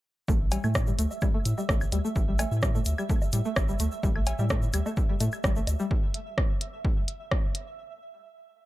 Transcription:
0.28 0.58 A1 loud
0.28 0.32 A3 medium
0.28 7.79 E5 medium
0.28 kick loud
0.28 low woodblock soft
0.28 shaker medium
0.52 0.58 G3 medium
0.52 closed hi-hat medium
0.52 cowbell medium
0.52 shaker medium
0.64 0.93 A2 medium
0.64 0.67 A3 medium
0.64 high woodblock medium
0.64 shaker soft
0.74 kick loud
0.74 cross-stick loud
0.74 low woodblock medium
0.74 shaker medium
0.87 0.93 G3 medium
0.87 shaker soft
0.99 1.07 D2 loud
0.99 1.02 A3 medium
0.99 closed hi-hat medium
0.99 shaker medium
1.11 low woodblock soft
1.11 shaker soft
1.21 1.28 G3 medium
1.21 kick loud
1.21 high woodblock medium
1.21 shaker medium
1.34 1.38 A3 medium
1.45 1.54 A2 loud
1.45 closed hi-hat medium
1.45 shaker loud
1.58 1.63 G3 medium
1.58 low woodblock medium
1.58 shaker soft
1.69 1.85 A1 medium
1.69 1.73 A3 medium
1.69 kick loud
1.69 cross-stick loud
1.69 shaker medium
1.81 high woodblock medium
1.81 shaker soft
1.92 2.01 D2 loud
1.92 1.98 G3 medium
1.92 closed hi-hat medium
1.92 low woodblock soft
1.92 shaker medium
2.05 2.08 A3 medium
2.05 shaker soft
2.16 2.45 A1 loud
2.16 kick loud
2.16 shaker soft
2.28 2.34 G3 medium
2.39 2.43 A3 medium
2.39 closed hi-hat medium
2.39 cowbell medium
2.39 high woodblock medium
2.39 low woodblock medium
2.39 shaker loud
2.51 2.80 A2 medium
2.51 shaker soft
2.62 2.69 G3 medium
2.62 kick loud
2.62 cross-stick loud
2.62 shaker medium
2.75 2.78 A3 medium
2.75 low woodblock soft
2.75 shaker soft
2.85 2.94 D2 loud
2.85 closed hi-hat medium
2.85 shaker loud
2.98 3.04 G3 medium
2.98 high woodblock medium
2.98 shaker soft
3.10 3.13 A3 medium
3.10 kick loud
3.10 shaker medium
3.22 low woodblock medium
3.22 shaker soft
3.32 3.41 A2 loud
3.32 3.39 G3 medium
3.32 closed hi-hat loud
3.32 shaker loud
3.45 3.49 A3 medium
3.45 shaker soft
3.56 3.73 A1 medium
3.56 kick loud
3.56 cross-stick loud
3.56 high woodblock medium
3.56 low woodblock soft
3.56 shaker medium
3.69 3.74 G3 medium
3.69 shaker soft
3.79 3.88 D2 loud
3.79 3.83 A3 medium
3.79 closed hi-hat loud
3.79 shaker loud
3.92 shaker soft
4.03 4.33 A1 loud
4.03 4.09 G3 medium
4.03 kick loud
4.03 low woodblock medium
4.03 shaker medium
4.16 4.19 A3 medium
4.16 high woodblock medium
4.26 closed hi-hat loud
4.26 cowbell medium
4.26 shaker medium
4.39 4.68 A2 medium
4.39 4.45 G3 medium
4.39 low woodblock soft
4.39 shaker soft
4.50 4.54 A3 medium
4.50 kick loud
4.50 cross-stick loud
4.50 shaker medium
4.62 shaker soft
4.73 4.82 D2 loud
4.73 4.80 G3 medium
4.73 closed hi-hat medium
4.73 high woodblock medium
4.73 shaker loud
4.86 4.89 A3 medium
4.86 low woodblock medium
4.86 shaker soft
4.97 kick loud
4.97 shaker soft
5.09 5.15 G3 medium
5.20 5.29 A2 loud
5.20 5.24 A3 medium
5.20 closed hi-hat loud
5.20 low woodblock soft
5.20 shaker medium
5.32 high woodblock medium
5.32 shaker soft
5.44 5.60 A1 medium
5.44 5.50 G3 medium
5.44 kick loud
5.44 cross-stick loud
5.44 shaker medium
5.56 5.59 A3 medium
5.56 shaker soft
5.67 5.76 D2 loud
5.67 closed hi-hat loud
5.67 low woodblock medium
5.67 shaker medium
5.80 5.85 G3 medium
5.80 shaker soft
5.91 kick loud
6.14 closed hi-hat medium
6.38 kick loud
6.38 cross-stick medium
6.61 closed hi-hat loud
6.85 kick loud
7.08 closed hi-hat medium
7.31 kick loud
7.31 cross-stick medium
7.55 closed hi-hat loud

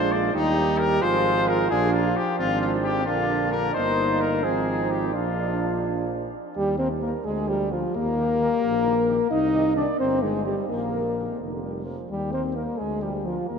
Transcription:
0.00 0.34 A#1 medium
0.00 0.34 G#3 medium
0.00 0.36 D4 medium
0.00 0.33 F4 medium
0.00 0.13 C5 loud
0.12 0.34 D5 loud
0.34 1.01 D#2 medium
0.34 1.05 G3 medium
0.34 1.01 D#4 medium
0.34 0.80 D#4 loud
0.34 1.03 G4 medium
0.79 1.04 A#4 loud
1.02 1.69 G#1 medium
1.02 1.70 F3 medium
1.02 1.73 F4 loud
1.02 1.71 G#4 medium
1.02 1.49 C5 loud
1.48 1.70 A#4 loud
1.69 2.15 A#1 medium
1.69 2.77 F3 medium
1.69 2.16 D4 loud
1.69 2.14 F4 medium
1.69 1.93 G#4 loud
1.93 2.18 F4 loud
2.17 2.38 G4 loud
2.38 3.09 G#1 medium
2.38 3.08 C4 medium
2.38 3.02 D4 medium
2.38 2.61 F4 loud
2.61 2.71 F4 loud
2.84 3.05 G4 loud
3.04 3.75 A#1 medium
3.04 3.71 D3 medium
3.04 3.74 A#3 medium
3.04 3.72 D4 medium
3.04 3.50 F4 loud
3.52 3.74 A#4 loud
3.73 4.47 G1 medium
3.73 4.45 A#3 medium
3.73 4.39 D#4 medium
3.73 4.45 D#4 medium
3.73 4.22 C5 loud
4.21 4.45 A#4 loud
4.43 5.17 G#1 medium
4.43 5.14 F3 medium
4.43 5.13 C4 medium
4.43 5.15 D#4 medium
4.43 4.92 G#4 loud
4.91 5.14 G4 medium
5.13 6.33 A#1 medium
5.13 6.30 F3 medium
5.13 6.32 D4 medium
5.13 6.18 D4 medium
5.13 5.84 F4 medium
6.56 7.14 D#2 medium
6.56 6.78 G3 medium
6.56 6.77 G4 medium
6.78 6.87 D#3 medium
6.78 6.89 C4 medium
6.78 6.88 A#4 medium
6.78 6.89 C5 medium
7.02 7.10 D#3 medium
7.02 7.13 A#3 medium
7.02 7.26 A#4 medium
7.02 7.11 A#4 medium
7.25 7.84 D2 medium
7.25 7.50 G#3 medium
7.25 7.50 G#4 medium
7.48 7.56 F3 medium
7.48 7.72 G3 medium
7.48 7.74 G4 medium
7.48 7.58 A#4 medium
7.71 7.80 F3 medium
7.71 7.97 F3 medium
7.71 7.95 F4 medium
7.71 7.80 A#4 medium
7.95 8.52 D#2 medium
7.95 9.30 A#3 loud
7.95 9.28 A#4 medium
8.17 8.26 D#3 medium
8.17 8.28 G4 medium
8.39 8.48 D#3 medium
8.39 8.49 G4 medium
8.64 9.20 A#1 medium
8.84 8.93 D#3 medium
8.84 8.94 G4 medium
9.07 9.16 D#3 medium
9.07 9.17 G4 medium
9.31 9.88 C2 medium
9.31 9.75 D#4 loud
9.31 9.76 D#5 medium
9.52 9.61 D#3 medium
9.52 9.62 G4 medium
9.75 9.84 D#3 medium
9.75 9.87 D4 medium
9.75 9.85 G4 medium
9.75 9.99 D5 medium
9.99 10.58 G1 medium
9.99 10.24 C4 medium
9.99 10.22 C5 medium
10.21 10.30 D#3 medium
10.21 10.45 G#3 medium
10.21 10.31 G4 medium
10.21 10.45 G#4 medium
10.45 10.53 D#3 soft
10.45 10.68 G3 medium
10.45 10.56 G4 medium
10.45 10.54 G4 soft
10.69 11.29 A#1 medium
10.69 11.39 A#3 medium
10.69 11.39 A#4 medium
10.91 11.00 D3 soft
10.91 11.02 A#4 soft
11.16 11.25 D3 soft
11.16 11.25 A#4 soft
11.39 11.99 F1 medium
11.39 11.64 D3 medium
11.63 11.87 G3 medium
11.63 11.72 A#4 soft
11.86 12.10 F3 soft
11.86 11.95 A#4 soft
12.10 12.68 D#2 medium
12.10 12.34 G3 medium
12.10 12.32 G4 medium
12.32 12.41 D#3 medium
12.32 12.57 C4 medium
12.32 12.42 A#4 medium
12.32 12.43 C5 medium
12.55 12.64 D#3 soft
12.55 12.80 A#3 medium
12.55 12.79 A#4 medium
12.55 12.65 A#4 soft
12.78 13.39 D2 medium
12.78 13.04 G#3 medium
12.78 13.01 G#4 medium
13.02 13.11 F3 soft
13.02 13.27 G3 medium
13.02 13.13 G4 medium
13.02 13.12 A#4 soft
13.25 13.34 F3 soft
13.25 13.50 F3 medium
13.25 13.50 F4 medium
13.25 13.35 A#4 soft
13.48 13.59 D#2 medium
13.48 13.59 A#3 medium
13.48 13.59 A#4 medium

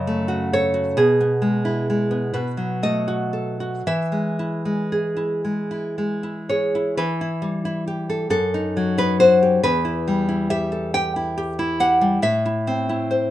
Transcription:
0.00 0.94 F#2 medium
0.00 0.98 C#3 soft
0.00 0.48 D#5 medium
0.07 0.97 A3 medium
0.28 0.53 F#4 medium
0.53 0.97 A4 medium
0.53 0.96 C#5 medium
0.74 0.97 F#4 soft
0.97 2.32 B2 medium
0.97 2.33 G#4 medium
1.21 2.10 B3 soft
1.42 1.89 G#3 soft
1.65 2.33 E4 medium
1.90 2.36 G#3 soft
2.11 2.35 B3 soft
2.34 3.82 B2 medium
2.34 2.81 B4 medium
2.57 3.85 F#3 soft
2.83 3.86 A3 soft
2.83 3.82 D#5 medium
3.08 3.59 F#4 soft
3.33 3.86 A4 soft
3.60 3.87 F#4 soft
3.87 6.96 E3 medium
3.87 5.41 E5 medium
4.12 4.64 G#3 soft
4.39 5.15 E4 soft
4.65 5.43 G#3 soft
4.92 6.49 G#4 soft
5.16 5.70 E4 soft
5.45 5.97 G#3 soft
5.71 6.22 E4 soft
5.98 7.00 G#3 soft
6.23 6.74 E4 soft
6.49 7.00 G#4 soft
6.49 6.97 C#5 medium
6.75 6.99 E4 soft
6.97 8.28 E3 medium
6.97 8.09 B4 medium
7.21 7.64 E4 medium
7.42 8.32 G3 medium
7.65 7.87 E4 medium
7.88 8.32 G4 medium
8.10 8.29 A4 medium
8.30 9.58 F#2 medium
8.30 8.94 A4 medium
8.54 8.96 D#4 medium
8.77 9.64 F#3 medium
8.98 9.64 D#4 medium
8.98 9.19 B4 medium
9.20 9.42 F#4 medium
9.20 9.62 C5 medium
9.43 9.64 G4 medium
9.63 12.19 E2 medium
9.63 10.48 B4 loud
9.85 10.27 E4 soft
10.08 11.37 G3 medium
10.29 10.71 E4 medium
10.50 10.93 G4 medium
10.50 10.92 E5 medium
10.72 12.01 A4 soft
10.94 11.36 G4 medium
10.94 11.16 G5 medium
11.16 11.58 E4 medium
11.38 11.79 G4 medium
11.59 12.23 E4 medium
11.80 12.23 G4 medium
11.80 12.21 F#5 medium
12.01 12.22 G3 medium
12.22 13.31 A2 medium
12.22 13.31 E5 medium
12.46 12.88 E4 medium
12.67 13.31 C4 medium
12.89 13.31 E4 medium
13.11 13.31 C5 medium

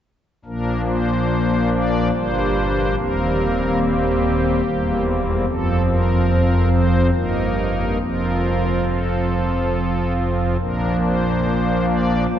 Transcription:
0.45 2.11 A#1 soft
0.45 2.11 A#2 soft
0.45 2.11 F3 soft
0.45 2.11 A#3 soft
0.45 2.10 D4 soft
0.45 0.81 A#4 medium
0.88 1.70 C5 medium
1.72 2.08 D5 medium
2.14 2.95 G1 medium
2.14 2.95 G2 medium
2.14 2.95 G3 soft
2.14 2.95 A#3 soft
2.14 2.95 D4 soft
2.14 2.95 C5 loud
2.98 4.62 D#1 medium
2.98 4.62 D#2 medium
2.98 4.62 G3 soft
2.98 4.62 A#3 soft
2.98 4.62 C4 soft
2.98 3.79 A#4 medium
3.82 5.03 G4 medium
4.66 5.45 E1 medium
4.66 5.45 E2 medium
4.66 5.45 G3 medium
4.66 5.45 A#3 medium
4.66 5.45 C4 medium
5.47 7.10 F1 medium
5.47 7.10 F2 medium
5.47 7.10 F3 soft
5.47 7.10 C4 medium
5.47 5.82 A4 loud
5.88 6.69 A#4 medium
6.71 7.07 C5 loud
7.14 7.98 G1 medium
7.14 7.98 G2 medium
7.14 7.98 A#3 soft
7.14 7.98 D#4 soft
7.14 7.98 A#4 medium
8.01 10.57 F1 soft
8.01 10.57 F2 soft
8.01 10.57 F3 soft
8.01 10.57 C4 soft
8.01 10.57 F4 soft
8.01 8.85 A#4 medium
8.87 10.13 A4 medium
10.60 12.27 A#1 medium
10.60 12.27 A#2 soft
10.60 12.27 F3 soft
10.60 12.26 A#3 soft
10.60 12.27 D4 soft
10.60 10.97 A#4 medium
11.02 11.86 C5 medium
11.88 12.24 D5 medium
12.31 12.39 G1 medium
12.31 12.39 G2 medium
12.31 12.39 G3 soft
12.31 12.39 A#3 soft
12.31 12.39 D4 soft
12.31 12.39 C5 medium

